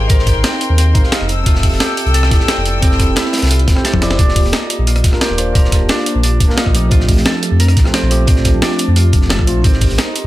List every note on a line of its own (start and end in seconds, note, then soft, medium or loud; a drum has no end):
0.00 0.44 C4 medium
0.00 0.07 D#4 medium
0.00 1.12 D#4 loud
0.00 0.58 F4 medium
0.00 0.95 G4 medium
0.00 1.86 G#4 medium
0.00 0.11 A#4 medium
0.00 1.26 A#4 medium
0.00 0.12 C5 medium
0.00 0.96 F5 loud
0.00 0.09 G5 medium
0.00 1.26 G5 medium
0.00 1.25 C6 medium
0.07 0.34 G#1 loud
0.07 0.92 D#4 medium
0.07 2.20 A#4 medium
0.07 0.93 A#4 medium
0.07 0.93 G5 medium
0.07 kick loud
0.07 closed hi-hat medium
0.12 0.94 C5 medium
0.19 snare soft
0.27 kick medium
0.27 snare soft
0.27 closed hi-hat medium
0.36 0.43 G#1 medium
0.44 0.78 C4 loud
0.44 snare loud
0.44 closed hi-hat medium
0.52 snare soft
0.61 closed hi-hat medium
0.70 0.94 D#2 loud
0.78 2.48 C4 medium
0.78 closed hi-hat medium
0.94 1.03 G#1 loud
0.94 1.28 D#4 medium
0.94 1.28 G4 medium
0.94 1.28 A#4 medium
0.94 1.29 F5 medium
0.94 kick loud
0.94 closed hi-hat medium
1.04 snare soft
1.12 3.23 D#4 loud
1.12 snare loud
1.12 closed hi-hat medium
1.12 closed hi-hat loud
1.21 1.45 F1 loud
1.21 cross-stick soft
1.29 4.16 A4 medium
1.29 4.16 G5 medium
1.29 4.16 E6 medium
1.29 closed hi-hat medium
1.44 1.71 F1 loud
1.44 2.28 C4 medium
1.44 3.23 F4 medium
1.44 2.30 G4 medium
1.44 2.29 E5 medium
1.44 kick loud
1.44 closed hi-hat medium
1.49 2.31 A4 medium
1.55 snare medium
1.63 kick medium
1.63 closed hi-hat medium
1.63 open hi-hat medium
1.72 1.79 F1 medium
1.72 snare soft
1.80 4.16 G4 medium
1.80 snare loud
1.80 closed hi-hat loud
1.97 closed hi-hat medium
2.06 2.30 C2 loud
2.06 closed hi-hat soft
2.14 3.84 A4 medium
2.14 snare soft
2.14 closed hi-hat medium
2.14 closed hi-hat loud
2.23 cross-stick soft
2.23 snare soft
2.29 2.39 F1 loud
2.29 2.79 C4 medium
2.29 2.80 E4 medium
2.29 2.81 G4 medium
2.29 kick loud
2.29 snare soft
2.29 closed hi-hat medium
2.34 2.82 D5 medium
2.40 snare soft
2.48 2.82 C4 loud
2.48 snare loud
2.48 closed hi-hat medium
2.48 closed hi-hat loud
2.57 2.81 F1 loud
2.65 closed hi-hat medium
2.80 3.07 F1 loud
2.80 3.65 C4 medium
2.80 5.83 C4 medium
2.80 3.65 E4 medium
2.80 3.66 G4 medium
2.80 kick loud
2.80 closed hi-hat medium
2.85 3.67 A4 medium
2.91 snare soft
2.99 kick medium
2.99 cross-stick soft
2.99 snare soft
2.99 closed hi-hat medium
3.08 3.16 F1 medium
3.16 3.57 E4 loud
3.16 snare loud
3.16 closed hi-hat loud
3.25 snare soft
3.33 snare medium
3.33 closed hi-hat medium
3.37 snare medium
3.37 closed hi-hat medium
3.42 3.66 C2 loud
3.42 snare medium
3.42 closed hi-hat medium
3.42 closed hi-hat soft
3.46 snare medium
3.46 closed hi-hat medium
3.51 4.87 F4 medium
3.51 closed hi-hat loud
3.51 closed hi-hat medium
3.59 closed hi-hat soft
3.68 3.76 F1 loud
3.68 kick loud
3.68 snare loud
3.68 closed hi-hat medium
3.75 3.99 C4 medium
3.75 4.00 E4 medium
3.75 4.00 G4 medium
3.75 4.00 C5 loud
3.75 cross-stick soft
3.75 snare soft
3.85 5.61 A4 medium
3.85 snare loud
3.85 snare medium
3.85 closed hi-hat medium
3.85 closed hi-hat loud
3.93 4.18 F1 medium
3.93 kick medium
3.93 high tom medium
4.01 4.16 C4 medium
4.01 4.17 E4 medium
4.01 4.17 G4 medium
4.01 4.17 D5 loud
4.01 snare medium
4.01 closed hi-hat medium
4.11 snare medium
4.11 closed hi-hat soft
4.17 4.43 D#1 loud
4.17 5.01 A#3 medium
4.17 4.59 D4 medium
4.17 5.03 F4 medium
4.17 5.02 D5 medium
4.17 kick loud
4.17 closed hi-hat loud
4.17 closed hi-hat medium
4.21 5.03 G4 medium
4.29 snare soft
4.36 kick medium
4.36 closed hi-hat loud
4.36 open hi-hat medium
4.44 4.52 D#1 medium
4.44 snare soft
4.53 5.95 D#4 loud
4.53 snare loud
4.53 closed hi-hat medium
4.70 closed hi-hat medium
4.70 closed hi-hat loud
4.79 5.03 A#1 loud
4.87 6.91 F4 medium
4.87 closed hi-hat loud
4.87 closed hi-hat medium
4.95 cross-stick soft
4.95 closed hi-hat soft
5.04 5.12 D#1 loud
5.04 kick loud
5.04 snare medium
5.04 closed hi-hat loud
5.04 closed hi-hat medium
5.12 5.36 A#3 medium
5.12 5.36 D4 medium
5.12 5.36 F4 medium
5.12 5.37 A#4 loud
5.12 cross-stick soft
5.12 snare soft
5.21 7.57 G4 medium
5.21 snare loud
5.21 closed hi-hat medium
5.30 5.54 D#1 loud
5.37 5.51 A#3 loud
5.37 5.53 D4 medium
5.37 5.53 F4 medium
5.37 5.54 C5 loud
5.37 closed hi-hat medium
5.53 5.80 D#1 loud
5.53 6.37 A#3 medium
5.53 6.38 D4 medium
5.53 6.39 F4 medium
5.53 7.32 A#4 medium
5.53 kick loud
5.53 closed hi-hat medium
5.57 6.40 G4 medium
5.65 snare soft
5.72 kick medium
5.72 cross-stick soft
5.72 snare soft
5.72 closed hi-hat loud
5.72 closed hi-hat medium
5.81 5.88 D#1 medium
5.89 6.23 D4 loud
5.89 snare loud
5.89 closed hi-hat medium
5.98 snare soft
6.06 closed hi-hat medium
6.15 6.39 A#1 loud
6.23 6.63 D4 medium
6.23 closed hi-hat medium
6.40 6.48 D#1 loud
6.40 kick loud
6.40 closed hi-hat medium
6.48 6.72 A#3 loud
6.48 6.72 D4 medium
6.48 6.73 F4 medium
6.48 6.73 A#4 loud
6.48 snare soft
6.57 8.68 D#4 loud
6.57 snare loud
6.57 closed hi-hat medium
6.66 6.90 A#1 loud
6.66 kick medium
6.66 cross-stick soft
6.73 6.88 F3 loud
6.73 6.89 A3 medium
6.73 6.90 C4 medium
6.73 6.90 G4 loud
6.73 closed hi-hat medium
6.89 7.16 A#1 loud
6.89 7.74 F3 medium
6.89 7.74 A3 medium
6.89 7.75 C4 medium
6.89 8.96 F4 medium
6.89 kick loud
6.89 closed hi-hat medium
6.94 7.76 D4 medium
7.00 snare soft
7.09 kick medium
7.09 closed hi-hat medium
7.09 open hi-hat medium
7.17 7.25 A#1 medium
7.17 snare soft
7.26 7.66 A4 medium
7.26 snare loud
7.26 closed hi-hat medium
7.43 closed hi-hat medium
7.51 7.75 F2 loud
7.60 9.36 A#4 medium
7.60 closed hi-hat medium
7.68 cross-stick soft
7.68 closed hi-hat medium
7.77 7.85 A#1 loud
7.77 kick loud
7.77 snare soft
7.77 closed hi-hat medium
7.84 8.08 F3 loud
7.84 8.09 A3 medium
7.84 8.09 C4 medium
7.84 8.09 F4 loud
7.84 cross-stick soft
7.84 snare soft
7.94 8.28 C4 loud
7.94 snare loud
7.94 closed hi-hat medium
8.03 8.27 A#1 loud
8.10 8.24 F3 medium
8.10 8.26 A3 medium
8.10 8.26 C4 medium
8.10 8.26 G4 loud
8.10 closed hi-hat medium
8.25 8.52 A#1 loud
8.25 9.10 F3 medium
8.25 9.11 A3 medium
8.25 9.64 C4 medium
8.25 9.12 C4 medium
8.25 kick loud
8.25 closed hi-hat loud
8.25 closed hi-hat medium
8.30 9.12 D4 medium
8.36 snare soft
8.45 kick medium
8.45 cross-stick soft
8.45 snare soft
8.45 closed hi-hat medium
8.54 8.61 A#1 medium
8.62 10.04 D4 loud
8.62 snare loud
8.62 closed hi-hat medium
8.71 snare soft
8.79 closed hi-hat medium
8.88 9.12 F2 loud
8.96 10.27 F4 medium
8.96 closed hi-hat medium
9.13 9.40 F1 medium
9.13 kick loud
9.13 closed hi-hat medium
9.22 snare soft
9.29 10.27 A4 medium
9.29 snare loud
9.29 closed hi-hat medium
9.39 9.63 A#1 medium
9.39 kick medium
9.39 cross-stick soft
9.46 9.62 F3 medium
9.46 9.62 A3 medium
9.46 9.62 C4 medium
9.46 9.63 F4 loud
9.46 closed hi-hat medium
9.62 9.89 G#1 loud
9.62 10.27 C4 medium
9.62 10.27 D#4 medium
9.62 10.27 G4 medium
9.62 10.27 A#4 medium
9.62 kick loud
9.62 closed hi-hat medium
9.67 10.27 C5 medium
9.73 snare soft
9.81 kick medium
9.81 closed hi-hat medium
9.81 open hi-hat medium
9.89 9.98 G#1 medium
9.89 snare soft
9.98 10.27 D#4 loud
9.98 snare loud
9.98 closed hi-hat medium
10.15 closed hi-hat medium